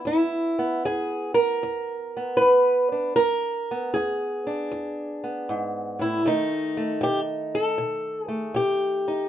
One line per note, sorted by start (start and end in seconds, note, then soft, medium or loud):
0.00 0.58 B3 soft
0.05 0.77 E2 medium
0.05 0.84 E4 medium
0.59 2.16 B3 medium
0.85 1.56 E2 medium
0.85 1.34 G#4 loud
1.34 2.36 A#4 loud
1.63 2.34 E2 medium
2.17 3.19 B3 soft
2.37 3.14 B4 loud
2.42 3.12 E2 medium
2.92 3.13 D4 soft
3.16 3.89 E2 medium
3.16 3.93 A#4 loud
3.71 5.23 B3 soft
3.94 4.66 E2 medium
3.94 5.98 G#4 medium
4.47 6.23 D4 soft
4.71 5.42 E2 medium
5.24 6.25 B3 soft
5.49 5.99 G#2 medium
5.99 6.25 A2 medium
5.99 6.26 E4 medium
6.25 6.97 B2 medium
6.25 9.29 D#3 soft
6.25 6.77 A3 soft
6.25 7.80 D#4 loud
6.77 8.27 A3 soft
7.01 7.73 B2 medium
7.01 7.19 G4 loud
7.55 8.23 A4 loud
7.78 8.50 B2 medium
8.23 8.56 G#4 loud
8.28 9.29 A3 soft
8.54 9.27 B2 medium
8.54 9.29 G4 loud
9.08 9.29 D#4 soft